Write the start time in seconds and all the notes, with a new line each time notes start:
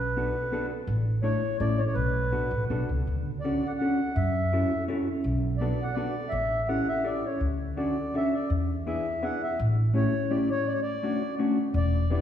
Already playing: B1 B4
0.17 B3 D4 F#4 A4
0.52 B3 D4 F#4 A4
0.87 A1
1.23 A3 D4 E4 A4 C#5
1.60 A1 A3 C#4 E4 A4 D5
1.78 C#5
1.86 C#5
1.94 B1 B4
2.32 B3 D4 F#4 A4
2.51 A1
2.70 B1 B3 D4 F#4 A4
2.89 C#2
3.07 D2
3.40 C#4 D5
3.45 D4 F#4 A4
3.66 F#5
3.78 C#4 D4 F#4 A4 F#5
4.16 F#2 E5
4.53 C#4 E4 F#4 A4
4.88 C#4 E4 F#4 A4
5.24 B1
5.58 B3 F#4 D5
5.62 D4 A4
5.82 F#5
5.94 B3 D4 F#4 A4 D5
6.29 A1 E5
6.68 C#4 E4 G4 A4 F#5
6.88 E5
7.04 C#4 E4 G4 A4 D5
7.25 C#5
7.41 D2
7.77 C#4 D4 F#4 A4 D5
8.14 C#4 D4 F#4 A4 E5
8.34 D5
8.50 E2
8.87 B3 D4 E4 G#4 E5
9.22 B3 D4 E4 G#4 F#5
9.43 E5
9.59 A1
9.94 A3 C#4 E4 G4 C#5
10.30 A3 C#4 E4 G4 D5
10.51 C#5
10.67 D5
10.73 C#5
10.82 D5
11.03 A3 C#4 D4 F#4
11.39 A3 C#4 D4 F#4
11.74 E1 D5
12.10 B3 D4 E4 G4 D5